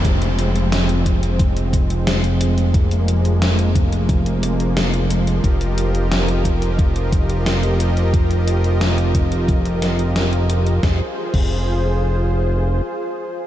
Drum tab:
CC |----------------|----------------|----------------|----------------|
HH |xxxxxxxxxxxxxxxx|xxxxxxxxxxxxxxxx|xxxxxxxxxxxxxxxx|xxxxxxxxxxxxxxxx|
SD |----o-------o---|----o-------o---|----o-------o---|----o-----o-o---|
BD |o-----o-o-o-----|o-----o-o-------|o-----o-o-o-----|o-----o-o-------|

CC |---x------------|
HH |----------------|
SD |o---------------|
BD |o--o------------|